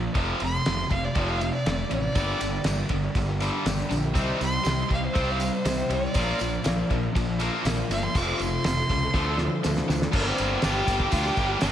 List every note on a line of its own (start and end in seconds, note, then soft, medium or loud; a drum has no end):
0.00 0.13 A#2 medium
0.00 0.14 F3 medium
0.00 0.14 D5 loud
0.14 0.32 F1 loud
0.14 0.39 F2 medium
0.14 0.39 C3 medium
0.14 0.39 F3 loud
0.14 kick loud
0.14 ride medium
0.40 0.58 F1 medium
0.40 0.64 F2 medium
0.40 0.64 C3 medium
0.40 0.91 C6 loud
0.40 ride medium
0.66 0.83 F1 medium
0.66 0.89 F2 medium
0.66 0.89 C3 medium
0.66 snare loud
0.66 ride medium
0.90 1.07 F1 medium
0.90 1.14 F2 medium
0.90 1.14 C3 medium
0.90 1.06 F5 loud
0.90 kick medium
0.90 ride medium
1.04 1.31 D5 medium
1.15 1.49 F1 medium
1.15 1.39 F2 medium
1.15 1.39 C3 loud
1.15 1.39 F3 medium
1.15 kick loud
1.15 ride medium
1.29 1.53 F5 medium
1.41 1.63 F2 medium
1.41 1.64 C3 medium
1.41 ride medium
1.55 1.91 D5 medium
1.66 1.83 F1 medium
1.66 1.89 F2 medium
1.66 1.89 C3 medium
1.66 snare loud
1.66 ride loud
1.91 2.08 A1 medium
1.91 2.13 F2 medium
1.91 2.14 C3 medium
1.91 2.89 D5 loud
1.91 ride medium
2.15 2.32 G1 loud
2.15 2.40 G2 medium
2.15 2.39 G2 loud
2.15 2.39 D3 medium
2.15 2.41 D3 medium
2.15 2.39 G3 medium
2.15 2.40 G3 medium
2.15 2.39 A#3 medium
2.15 2.40 D4 medium
2.15 2.41 G4 medium
2.15 kick loud
2.15 ride loud
2.15 tambourine medium
2.40 2.57 G1 medium
2.40 2.63 G2 medium
2.40 2.64 D3 medium
2.40 2.65 G3 medium
2.40 2.66 A#3 medium
2.40 2.66 D4 medium
2.40 2.66 G4 medium
2.40 ride medium
2.40 tambourine medium
2.64 2.82 G1 loud
2.64 2.88 G2 medium
2.64 2.79 G2 medium
2.64 2.88 D3 medium
2.64 2.79 D3 medium
2.64 2.79 G3 medium
2.64 2.79 A#3 medium
2.64 2.79 D4 medium
2.64 2.78 G4 loud
2.64 snare loud
2.64 ride loud
2.64 tambourine medium
2.80 3.04 G3 soft
2.80 3.03 A#3 medium
2.80 3.03 D4 medium
2.80 3.02 G4 medium
2.89 3.07 G1 loud
2.89 3.13 G2 medium
2.89 3.13 D3 medium
2.89 kick medium
2.89 ride medium
3.03 3.29 G3 medium
3.03 3.28 A#3 medium
3.03 3.28 D4 medium
3.03 3.27 G4 medium
3.15 3.49 G1 loud
3.15 3.39 G2 medium
3.15 3.39 D3 medium
3.15 kick loud
3.15 ride medium
3.15 tambourine soft
3.28 3.40 G3 soft
3.28 3.41 A#3 medium
3.28 3.41 D4 medium
3.28 3.41 G4 medium
3.40 3.64 G2 medium
3.40 3.64 D3 medium
3.40 3.65 G3 medium
3.40 3.66 G3 medium
3.40 3.67 A#3 medium
3.40 3.67 D4 medium
3.40 3.67 G4 medium
3.40 ride medium
3.40 tambourine medium
3.65 3.82 G1 loud
3.65 3.88 G2 medium
3.65 3.91 G2 loud
3.65 3.88 D3 loud
3.65 3.91 D3 loud
3.65 3.91 G3 loud
3.65 3.92 A#3 loud
3.65 3.92 D4 medium
3.65 3.92 G4 loud
3.65 snare loud
3.65 ride loud
3.65 tambourine medium
3.89 4.15 A#1 medium
3.89 4.13 G2 medium
3.89 4.13 D3 medium
3.89 4.04 G3 medium
3.89 4.04 A#3 medium
3.89 4.04 D4 medium
3.89 ride medium
3.89 tambourine medium
3.94 4.03 G4 medium
4.05 4.15 G3 soft
4.05 4.16 A#3 medium
4.05 4.16 D4 medium
4.05 4.16 G4 medium
4.14 4.32 C2 loud
4.14 4.38 C3 medium
4.14 4.41 C3 medium
4.14 4.39 G3 loud
4.14 4.40 G3 medium
4.14 4.39 C4 loud
4.14 4.41 C4 medium
4.14 4.41 D#4 loud
4.14 4.41 G4 loud
4.14 kick loud
4.14 ride medium
4.14 tambourine medium
4.40 4.57 C2 medium
4.40 4.62 C3 medium
4.40 4.63 G3 medium
4.40 4.65 G3 medium
4.40 4.66 C4 medium
4.40 4.67 D#4 medium
4.40 4.67 G4 medium
4.40 4.90 C6 loud
4.40 ride medium
4.40 tambourine medium
4.64 4.82 C2 medium
4.64 4.87 C3 medium
4.64 4.79 C3 medium
4.64 4.87 G3 medium
4.64 4.78 G3 medium
4.64 4.79 C4 medium
4.64 snare loud
4.64 ride medium
4.64 tambourine medium
4.68 4.79 D#4 medium
4.68 4.79 G4 medium
4.80 5.05 C4 soft
4.80 5.04 D#4 medium
4.80 5.04 G4 medium
4.89 5.07 C2 medium
4.89 5.12 C3 medium
4.89 5.12 G3 medium
4.89 kick medium
4.89 ride medium
4.94 5.04 F5 medium
5.05 5.29 C4 soft
5.05 5.28 D#4 medium
5.05 5.27 G4 medium
5.05 5.32 C5 medium
5.14 5.49 C2 medium
5.14 5.38 C3 medium
5.14 5.38 G3 medium
5.14 5.38 C4 loud
5.14 kick loud
5.14 ride medium
5.14 tambourine soft
5.29 5.41 C4 soft
5.29 5.41 D#4 soft
5.29 5.41 G4 medium
5.29 5.54 F5 loud
5.39 5.62 C3 medium
5.39 5.62 G3 medium
5.39 5.66 G3 medium
5.39 5.66 C4 medium
5.39 5.66 D#4 medium
5.39 ride medium
5.39 tambourine medium
5.43 5.67 G4 medium
5.55 5.90 C5 medium
5.65 5.82 C2 medium
5.65 5.88 C3 medium
5.65 5.92 C3 medium
5.65 5.88 G3 medium
5.65 5.92 G3 medium
5.65 5.92 C4 medium
5.65 5.92 D#4 medium
5.65 snare loud
5.65 ride medium
5.65 tambourine loud
5.69 5.92 G4 medium
5.89 6.06 C2 loud
5.89 6.13 C3 medium
5.89 6.13 G3 medium
5.89 6.04 G3 medium
5.89 6.04 C4 medium
5.89 ride medium
5.94 6.04 D#4 medium
5.94 6.03 G4 medium
5.94 6.89 D5 loud
6.04 6.17 C4 medium
6.04 6.16 D#4 medium
6.04 6.16 G4 soft
6.14 6.32 A#1 loud
6.14 6.38 A#2 medium
6.14 6.41 A#2 medium
6.14 6.41 D3 medium
6.14 6.39 F3 loud
6.14 6.40 F3 medium
6.14 6.39 A#3 loud
6.14 6.41 A#3 medium
6.14 6.41 D4 medium
6.14 6.42 A#4 medium
6.14 kick loud
6.14 ride loud
6.14 tambourine medium
6.39 6.57 A#1 medium
6.39 6.63 A#2 medium
6.39 6.63 F3 medium
6.39 6.64 A#3 medium
6.39 6.64 D4 medium
6.39 ride medium
6.39 tambourine medium
6.44 6.65 A#4 medium
6.64 6.82 A#1 medium
6.64 6.87 A#2 medium
6.64 6.77 A#2 loud
6.64 6.77 D3 medium
6.64 6.77 F3 medium
6.64 6.87 F3 medium
6.64 6.78 A#3 medium
6.64 6.77 D4 medium
6.64 6.77 A#4 loud
6.64 snare loud
6.64 ride loud
6.64 tambourine medium
6.78 7.03 F3 medium
6.78 7.03 A#3 medium
6.78 7.02 D4 medium
6.78 7.02 A#4 medium
6.90 7.07 A#1 loud
6.90 7.12 A#2 medium
6.90 7.12 F3 medium
6.90 kick medium
6.90 ride medium
7.03 7.28 F3 medium
7.03 7.28 A#3 medium
7.03 7.28 D4 medium
7.03 7.27 A#4 medium
7.15 7.48 A#1 medium
7.15 7.37 A#2 medium
7.15 7.38 F3 medium
7.15 kick loud
7.15 ride loud
7.15 tambourine soft
7.28 7.39 F3 medium
7.28 7.40 A#3 medium
7.28 7.41 D4 medium
7.28 7.40 A#4 medium
7.39 7.63 A#2 medium
7.39 7.63 F3 medium
7.39 7.64 F3 medium
7.39 7.64 A#3 loud
7.39 7.64 A#3 medium
7.39 7.65 D4 medium
7.39 7.65 A#4 medium
7.39 ride medium
7.39 tambourine medium
7.65 7.81 A#1 medium
7.65 7.90 A#2 medium
7.65 7.88 A#2 medium
7.65 7.90 D3 medium
7.65 7.90 F3 loud
7.65 7.88 F3 medium
7.65 7.90 A#3 loud
7.65 7.90 D4 loud
7.65 7.90 A#4 loud
7.65 snare loud
7.65 ride medium
7.65 tambourine medium
7.90 8.06 G1 medium
7.90 8.13 A#2 medium
7.90 8.03 F3 medium
7.90 8.13 F3 medium
7.90 8.03 A#3 medium
7.90 8.03 D4 medium
7.90 8.03 A#4 medium
7.90 8.04 F5 loud
7.90 ride medium
7.90 tambourine medium
8.03 8.14 F3 soft
8.03 8.15 A#3 medium
8.03 8.16 D4 medium
8.03 8.15 A#4 medium
8.03 8.19 C6 loud
8.14 8.31 F1 loud
8.14 8.38 F2 medium
8.14 8.38 C3 loud
8.14 8.39 F3 medium
8.14 8.39 F3 loud
8.14 8.40 C4 medium
8.14 8.40 F4 medium
8.14 8.40 A4 medium
8.14 8.43 D6 medium
8.14 kick loud
8.14 ride medium
8.14 tambourine medium
8.39 8.56 F1 medium
8.39 8.62 F2 medium
8.39 8.62 C3 medium
8.39 8.63 F3 medium
8.39 8.64 C4 medium
8.39 8.64 F4 medium
8.39 8.64 A4 medium
8.39 9.85 C6 loud
8.39 ride medium
8.39 tambourine medium
8.64 8.81 F1 medium
8.64 8.87 F2 medium
8.64 8.87 C3 medium
8.64 8.77 F3 medium
8.64 8.77 C4 medium
8.64 8.77 F4 medium
8.64 8.77 A4 medium
8.64 snare loud
8.64 ride medium
8.64 tambourine medium
8.79 9.03 C4 soft
8.79 9.03 F4 medium
8.79 9.02 A4 medium
8.89 9.06 C#2 loud
8.89 9.12 F2 medium
8.89 9.12 C3 medium
8.89 kick medium
8.89 ride medium
8.89 tambourine soft
9.03 9.13 C4 soft
9.03 9.15 F4 medium
9.03 9.15 A4 medium
9.14 9.47 D2 medium
9.14 9.37 D3 loud
9.14 9.26 D3 medium
9.14 9.38 F3 loud
9.14 9.27 F3 medium
9.14 9.38 A3 loud
9.14 9.27 C4 medium
9.14 9.27 D4 medium
9.14 9.27 A4 medium
9.14 kick loud
9.14 snare medium
9.14 tambourine soft
9.29 9.41 C4 medium
9.29 9.41 D4 medium
9.29 9.40 A4 medium
9.38 9.61 D3 medium
9.38 9.61 F3 medium
9.38 9.65 F3 medium
9.38 snare medium
9.42 9.64 C4 medium
9.42 9.65 D4 medium
9.42 9.66 A4 medium
9.63 9.81 D2 medium
9.63 9.86 D3 medium
9.63 9.90 D3 medium
9.63 9.86 F3 medium
9.63 9.88 F3 medium
9.63 9.89 C4 loud
9.63 9.90 D4 loud
9.63 9.90 A4 loud
9.63 snare medium
9.63 tambourine medium
9.77 snare medium
9.88 10.05 D2 medium
9.88 10.11 D3 medium
9.88 10.11 F3 medium
9.88 10.01 F3 medium
9.88 10.02 C4 medium
9.88 10.02 D4 medium
9.88 10.02 A4 medium
9.88 snare medium
9.88 tambourine medium
10.02 10.16 C4 soft
10.02 10.15 D4 medium
10.02 10.15 A4 medium
10.02 snare medium
10.12 10.30 G1 loud
10.12 10.62 G2 medium
10.12 10.60 D3 loud
10.12 10.37 G3 loud
10.12 10.37 A#3 loud
10.12 10.29 A#3 medium
10.12 10.36 D4 loud
10.12 kick loud
10.12 crash loud
10.12 crash medium
10.27 10.65 C4 medium
10.36 10.55 G1 medium
10.36 10.62 G3 medium
10.36 10.63 A#3 medium
10.36 10.63 D4 medium
10.36 tambourine medium
10.36 crash medium
10.62 10.81 G1 loud
10.62 11.12 D3 medium
10.62 10.87 G3 medium
10.62 10.87 A#3 medium
10.62 10.86 D4 medium
10.62 11.13 G4 loud
10.62 snare loud
10.62 tambourine medium
10.62 crash medium
10.87 11.04 G1 loud
10.87 11.37 G3 medium
10.87 11.36 A#3 medium
10.87 11.36 D4 medium
10.87 kick medium
10.87 tambourine medium
10.87 crash medium
11.00 kick loud
11.12 11.29 D2 loud
11.12 11.27 F4 loud
11.12 kick loud
11.12 tambourine medium
11.12 crash loud
11.25 11.61 G4 loud
11.25 snare soft
11.36 11.54 G1 loud
11.36 11.62 G3 medium
11.36 11.62 A#3 medium
11.36 11.64 D4 medium
11.36 kick medium
11.36 tambourine soft
11.36 crash medium
11.61 11.72 G1 loud
11.61 11.72 G2 loud
11.61 11.72 D3 loud
11.61 11.72 G3 loud
11.61 11.72 A#3 loud
11.61 11.70 D4 medium
11.61 11.72 D4 loud
11.61 snare loud
11.61 tambourine loud
11.61 crash medium